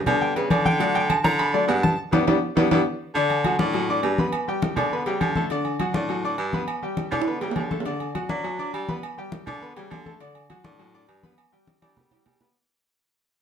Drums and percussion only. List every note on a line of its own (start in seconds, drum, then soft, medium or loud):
0.06 high conga soft
0.06 low conga medium
0.06 low agogo loud
0.21 high conga soft
0.36 high conga soft
0.36 low agogo medium
0.50 high conga medium
0.50 low agogo loud
0.66 high conga medium
0.80 high conga soft
0.80 low agogo medium
0.95 high conga soft
0.95 low agogo medium
1.10 high conga medium
1.10 low agogo loud
1.25 high conga medium
1.39 high conga soft
1.39 low agogo medium
1.54 high conga soft
1.69 high conga soft
1.69 low timbale medium
1.69 low agogo loud
1.84 high conga medium
2.13 high conga loud
2.13 high timbale loud
2.28 high conga medium
2.28 high timbale loud
2.57 high conga loud
2.57 high timbale loud
2.71 high conga medium
2.71 high timbale loud
3.15 high conga soft
3.15 low agogo medium
3.30 high conga soft
3.30 low agogo medium
3.44 high conga medium
3.44 low agogo loud
3.59 high conga medium
3.74 high conga soft
3.74 low agogo medium
3.89 high conga soft
4.03 high conga soft
4.03 low timbale medium
4.03 low agogo loud
4.18 high conga medium
4.33 high conga soft
4.33 low agogo loud
4.48 high conga soft
4.62 high conga loud
4.62 low agogo medium
4.77 high conga soft
4.77 low conga medium
4.77 low agogo loud
4.92 high conga soft
5.06 high conga soft
5.06 low agogo medium
5.21 high conga medium
5.21 low agogo loud
5.36 high conga medium
5.50 high conga soft
5.50 low agogo medium
5.65 high conga soft
5.65 low agogo medium
5.80 high conga medium
5.80 low agogo loud
5.94 high conga loud
6.09 high conga soft
6.09 low agogo medium
6.24 high conga soft
6.38 high conga soft
6.38 low agogo loud
6.53 high conga medium
6.68 high conga soft
6.68 low agogo loud
6.83 high conga soft
6.97 high conga medium
6.97 low agogo medium
7.12 high conga soft
7.12 low conga medium
7.12 high timbale medium
7.12 low agogo loud
7.22 high timbale loud
7.27 high conga soft
7.41 high conga soft
7.41 low timbale medium
7.41 low agogo medium
7.51 low timbale medium
7.56 high conga medium
7.56 low agogo loud
7.61 low timbale medium
7.71 high conga medium
7.80 low timbale loud
7.85 high conga soft
7.85 low agogo medium
8.00 high conga soft
8.00 low agogo medium
8.15 high conga medium
8.15 low agogo loud
8.29 high conga medium
8.44 high conga soft
8.44 low agogo medium
8.59 high conga soft
8.74 high conga soft
8.74 low agogo loud
8.89 high conga medium
9.03 high conga soft
9.03 low agogo loud
9.18 high conga soft
9.32 high conga loud
9.32 low agogo medium
9.47 high conga soft
9.47 low conga medium
9.47 low agogo loud
9.62 high conga soft
9.77 high conga soft
9.77 low agogo medium
9.91 high conga medium
9.91 low timbale medium
9.91 low agogo loud
10.06 high conga medium
10.20 high conga soft
10.20 low agogo medium
10.35 high conga soft
10.35 low agogo medium
10.50 high conga medium
10.50 low agogo loud
10.65 high conga loud
10.79 high conga soft
10.79 low agogo medium
10.94 high conga soft
11.09 high conga soft
11.09 low agogo loud
11.23 high conga medium
11.38 high conga soft
11.38 low agogo loud
11.53 high conga soft
11.67 high conga loud
11.67 low agogo medium
11.82 high conga loud
11.82 low agogo loud
11.97 low conga loud
12.11 low conga medium
12.11 high timbale medium
12.11 low agogo medium
12.26 low conga medium
12.26 low timbale medium
12.26 low agogo loud
12.41 low conga medium
12.41 low timbale medium